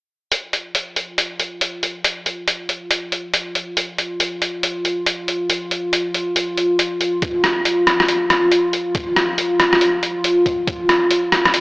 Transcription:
0.32 F4, closed hi-hat
0.53 closed hi-hat
0.75 closed hi-hat
0.96 closed hi-hat
1.18 closed hi-hat
1.40 closed hi-hat
1.61 closed hi-hat
1.83 closed hi-hat
2.04 closed hi-hat
2.26 closed hi-hat
2.48 closed hi-hat
2.69 closed hi-hat
2.91 closed hi-hat
3.12 closed hi-hat
3.34 closed hi-hat
3.55 closed hi-hat
3.77 closed hi-hat
3.98 closed hi-hat
4.20 closed hi-hat
4.42 closed hi-hat
4.63 closed hi-hat
4.85 closed hi-hat
5.06 closed hi-hat
5.28 closed hi-hat
5.50 closed hi-hat
5.71 closed hi-hat
5.93 closed hi-hat
6.14 closed hi-hat
6.36 closed hi-hat
6.57 closed hi-hat
6.79 closed hi-hat
7.01 closed hi-hat
7.22 kick, closed hi-hat
7.44 cross-stick, closed hi-hat
7.65 closed hi-hat
7.87 cross-stick, closed hi-hat
8.00 cross-stick
8.08 closed hi-hat
8.30 cross-stick, closed hi-hat
8.52 closed hi-hat
8.73 closed hi-hat
8.95 kick, closed hi-hat
9.16 cross-stick, closed hi-hat
9.38 closed hi-hat
9.60 cross-stick, closed hi-hat
9.73 cross-stick
9.81 closed hi-hat
10.03 closed hi-hat
10.24 closed hi-hat
10.46 kick, closed hi-hat
10.67 kick, closed hi-hat
10.89 cross-stick, closed hi-hat
11.11 closed hi-hat
11.32 cross-stick, closed hi-hat
11.45 cross-stick
11.54 closed hi-hat

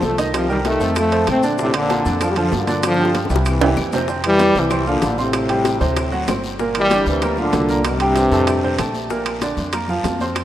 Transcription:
Already playing: A3 A4 C5
0.02 C2 F3 A3, high bongo, low bongo, high conga, short guiro, maracas
0.18 D#3 D#4 D#5, high bongo, high conga, high timbale, short guiro, maracas
0.34 C3 F3, high bongo, high conga, high timbale, long guiro, claves, maracas
0.49 D#3 G3 G4 A#4, high conga, maracas
0.65 D#3 A3, high bongo, high conga, high timbale, short guiro, maracas
0.80 F2 A3 A4 C5, high bongo, short guiro, maracas
0.96 F3 A3, high bongo, high conga, high timbale, long guiro, claves, maracas
1.12 A3 A4 C5, high bongo, high timbale, maracas
1.27 A#1 A3 C4, high bongo, low bongo, high conga, high timbale, short guiro, claves, maracas
1.43 D3 D4 D5, high bongo, high conga, short guiro, maracas
1.58 A2 C3 D3 D4 D5, high bongo, long guiro, maracas
1.74 A#2 D3, high conga, high timbale, claves, maracas
1.89 F3 F4 A4, high bongo, high conga, high timbale, short guiro, maracas
2.05 F2 D3 D4 D5, high bongo, short guiro, maracas
2.21 D3 F3 F4 A4, high bongo, high conga, low conga, high timbale, long guiro, claves, maracas
2.29 G3
2.36 D3 F3 F4 A4, high bongo, high conga, low conga, high timbale, maracas
2.52 G2 A#2 D3, high bongo, low bongo, high conga, low timbale, short guiro, maracas
2.67 D3 D4 D5, high bongo, high conga, high timbale, short guiro, maracas
2.83 D3 F3, high bongo, high conga, high timbale, long guiro, claves, maracas
2.94 high bongo
2.99 F3 F4 G4, high conga, maracas
3.05 high bongo
3.14 high conga, high timbale, short guiro, maracas
3.25 low bongo
3.30 C2 E3 E4 G4, high conga, short guiro, maracas
3.36 high bongo
3.45 C3 E3, high conga, high timbale, long guiro, claves, maracas
3.61 E3 E4 G4, high conga, high timbale, maracas
3.77 F2, low bongo, high conga, short guiro, claves, maracas
3.92 C3 C4 C5, high conga, low timbale, short guiro, maracas
3.98 low bongo
4.08 C3 C4 C5, high bongo, high conga, long guiro, maracas
4.24 E3 G3, high bongo, high conga, high timbale, claves, maracas
4.39 E3 E4 E5, high bongo, high conga, high timbale, short guiro, maracas
4.55 C2 C3 E3, high bongo, short guiro, maracas
4.71 C4 C5 C6, high bongo, high conga, low conga, high timbale, long guiro, claves, maracas
4.86 A#2 D3 F3 F4 F5, high bongo, high conga, maracas
5.02 A1, high bongo, low bongo, high conga, high timbale, short guiro, maracas
5.18 A2 C3 C4 C5 C6, high conga, short guiro, maracas
5.33 high bongo, high conga, high timbale, long guiro, claves, maracas
5.49 G3 G4 G5, high bongo, high timbale, maracas
5.65 high bongo, high conga, high timbale, short guiro, maracas
5.81 D2 C3 C4 C5, high bongo, short guiro, maracas
5.96 high bongo, high timbale, long guiro, claves, maracas
6.12 F#3 F#4 F#5, high bongo, maracas
6.28 G1 C4 C5 C6, high bongo, low bongo, high conga, high timbale, low timbale, short guiro, claves, maracas
6.44 short guiro, maracas
6.59 A#2 A#3 A#4, high bongo, high conga, long guiro, maracas
6.75 E3 G3, high bongo, high conga, high timbale, claves, maracas
6.90 D3 D4 D5, high bongo, high conga, high timbale, short guiro, maracas
7.06 D2 C3 E3, high bongo, short guiro, maracas
7.21 A#3 A#4 A#5, high bongo, high conga, low conga, high timbale, long guiro, claves, maracas
7.37 A#2 D3 F3 F4 F5, high bongo, high conga, low conga, maracas
7.53 C2, high bongo, low bongo, high conga, high timbale, low timbale, short guiro, maracas
7.68 A#3 A#4 A#5, high conga, short guiro, maracas
7.84 G2 C3, high bongo, high timbale, long guiro, claves, maracas
8.00 G3 G4 G5, high bongo, high conga, high timbale, maracas
8.16 high bongo, high conga, high timbale, short guiro, maracas
8.31 F2 A2 A3 A4, high bongo, high conga, short guiro, maracas
8.47 high bongo, high conga, high timbale, long guiro, claves, maracas
8.63 C3 C4 C5, high bongo, high conga, maracas
8.78 A#1 A3 A4 A5, high bongo, low bongo, high conga, high timbale, short guiro, claves, maracas
8.94 high conga, short guiro, maracas
9.10 A#2 A#3 A#4, high bongo, high conga, long guiro, maracas
9.26 high bongo, high conga, high timbale, claves, maracas
9.41 D3 D4 D5, high bongo, high conga, high timbale, short guiro, maracas
9.57 F2, high bongo, high conga, short guiro, maracas
9.72 A#3 A#4 A#5, high bongo, high conga, low conga, high timbale, long guiro, claves, maracas
9.88 F3 F4 F5, high bongo, high conga, low conga, maracas
10.04 F2, high bongo, low bongo, high conga, high timbale, low timbale, short guiro, maracas
10.19 C4 C5 C6, high conga, short guiro, maracas
10.35 high bongo, high conga, high timbale, long guiro, claves, maracas

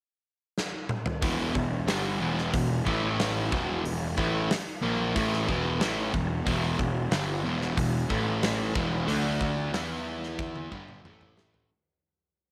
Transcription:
0.58 snare
0.89 mid tom
1.06 floor tom
1.22 E1 E2 B2 E3, kick, open hi-hat
1.53 E1 E2 B2, kick
1.87 G1 G2 D3 G3, snare, open hi-hat
2.19 E1 E2 B2 E3
2.38 snare
2.52 E1 E2 B2, kick, open hi-hat
2.85 A1 A2 E3 A3, kick
3.20 snare, open hi-hat
3.50 E1 E2 B2 E3, kick
3.84 E1 E2 B2, open hi-hat
4.17 A1 A2 E3 A3, kick
4.50 muted distorted electric guitar stroke, muted picked electric bass stroke, snare, open hi-hat
4.81 A#1 A#2 F3 A#3
5.15 A1 A2 E3 A3, kick, open hi-hat
5.33 snare
5.48 E1 E2 B2 E3, kick
5.80 A1 A2 E3 A3, snare, open hi-hat
6.12 E1 E2 B2, kick
6.45 E1 E2 B2 E3, kick, open hi-hat
6.79 E1 E2 B2, kick
7.11 G1 G2 D3 G3, snare, open hi-hat
7.44 E1 E2 B2 E3
7.61 snare
7.77 E1 E2 B2, kick, open hi-hat
8.09 A1 A2 E3 A3, kick
8.43 snare, open hi-hat
8.74 E1 E2 B2 E3, kick
9.07 D2 D3 A3 D4, open hi-hat
9.41 kick
9.73 E2 E3 B3 E4, snare, open hi-hat
10.23 snare
10.39 kick, high tom
10.56 high tom
10.71 G1 G2 D3 G3, kick
10.88 mid tom
11.04 A1 A2 E3 A3, mid tom
11.21 mid tom
11.37 snare
11.54 floor tom

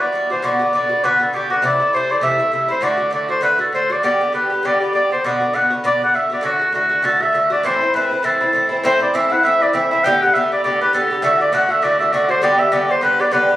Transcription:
0.00 E3 B3 F#4 D5
0.12 G2 E3 B3 F#4
0.30 E3 B3 F#4 C5
0.42 B2 D3 B3 F#4 D5
0.59 D3 B3 F#4
0.73 B2 D3 B3 F#4 D5
0.89 D3 B3 F#4
1.04 B2 D3 B3 F#4 B4
1.20 D3 B3 F#4 A4
1.33 B2 D3 B3 F#4 G4
1.50 D3 B3 F#4
1.62 C3 E3 A3 E4 D5
1.80 E3 A3 E4
1.93 C3 E3 A3 E4 C5
2.10 E3 A3 E4 D5
2.21 C3 E3 A3 E4 E5
2.38 E3 A3 E4
2.52 C3 E3 A3 E4 E5
2.68 E3 A3 E4 C5
2.81 A2 D3 A3 F#4 D5
2.97 D3 A3 F#4
3.10 A2 D3 A3 F#4 D5
3.29 D3 A3 F#4 C5
3.41 A2 D3 A3 F#4 B4
3.59 D3 A3 F#4 A4
3.73 A2 D3 A3 F#4 C5
3.90 D3 A3 F#4 D5
4.03 G2 D3 B3 G4 D5
4.21 D3 B3 G4
4.32 G2 D3 B3 G4 B4
4.50 D3 B3 G4
4.63 G2 D3 B3 G4 D5
4.80 D3 B3 G4 D5
4.93 G2 D3 B3 G4 D5
5.11 D3 B3 G4 C5
5.24 B2 D3 B3 F#4 D5
5.40 D3 B3 F#4
5.54 B2 D3 B3 F#4 F#5
5.70 D3 B3 F#4
5.84 B2 D3 B3 F#4 D5
6.02 D3 B3 F#4 F#5
6.14 B2 D3 B3 F#4 E5
6.30 D3 B3 F#4 D5
6.41 A2 D3 A3 F#4
6.45 F#4
6.59 D3 A3 F#4
6.72 A2 D3 A3 F#4
6.90 D3 A3 F#4
7.02 A2 D3 A3 F#4 A4
7.20 D3 A3 F#4 E5
7.33 A2 D3 A3 F#4
7.50 D3 A3 F#4 D5
7.63 A2 E3 C4 E4 C5
7.81 E3 C4 E4
7.93 A2 E3 C4 E4 B4
8.11 E3 C4 E4
8.23 A2 E3 C4 E4 A4
8.41 E3 C4 E4
8.53 A2 E3 C4 E4
8.69 E3 C4 E4
8.84 A2 E3 C4 E4 C5
9.00 E3 C4 E4 D5
9.14 A2 E3 C4 E4 E5
9.30 E3 C4 E4 F#5
9.43 A2 E3 C4 E4 E5
9.60 E3 C4 E4 D5
9.73 A2 E3 C4 E4 E5
9.91 E3 C4 E4 E5
10.04 A2 D3 B3 G4 G5
10.22 B3 G4 F#5
10.26 D3
10.34 A2 D3 B3 G4 E5
10.52 D3 B3 G4 D5
10.64 A2 D3 B3 G4 D5
10.81 D3 B3 G4 B4
10.93 A2 D3 B3 G4 A4
11.11 D3 B3 G4
11.22 A2 D3 A3 F#4 E5
11.39 D3 A3 F#4 D5
11.52 A2 D3 A3 F#4 F#5
11.68 D3 A3 F#4 E5
11.82 A2 D3 A3 F#4 D5
11.99 D3 A3 F#4 E5
12.12 A2 D3 A3 F#4 D5
12.29 D3 A3 F#4 C5
12.42 G2 D3 B3 G4 D5
12.58 D3 B3 G4 E5
12.72 G2 D3 B3 G4 D5
12.89 D3 B3 G4 C5
13.01 G2 D3 B3 G4 B4
13.19 D3 B3 G4 D5
13.31 G2 D3 B3 G4 B4
13.49 D3 B3 G4

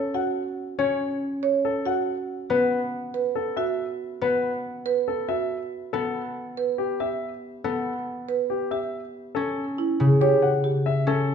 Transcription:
Already playing: C#4 A4
0.14 F#4 F#5
0.79 C#4 C#5
1.43 C#5
1.65 A4
1.86 F#4 F#5
2.50 B3 B4
3.14 B4
3.35 A4
3.57 F#4 E5
4.21 B3 B4
4.86 B4
5.08 A4
5.29 F#4 E5
5.93 B3 A4
6.57 B4
6.78 G4
7.00 G4 E5
7.64 B3 A4
8.29 B4
8.50 G4
8.71 G4 E5
9.35 C#4 A4
9.78 E4
10.00 C#3
10.21 G4 C#5
10.42 F#5
10.64 G4
10.86 E5
11.07 C#4 A4

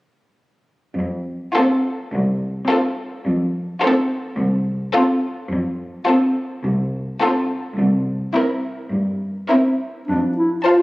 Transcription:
0.98 F2
1.55 C4 F4 A4
2.12 C2
2.69 C4 F4 A4
3.25 F2
3.81 C4 F4 A4
4.38 C2
4.95 C4 F4 A4
5.51 F2
6.07 C4 F4 A4
6.64 C2
7.21 C4 F4 A4
7.78 C2
8.35 C4 E4 A#4
8.92 G2
9.49 C4 E4 A#4
10.07 F2 D4
10.37 E4
10.65 F4 C5 F5 A5

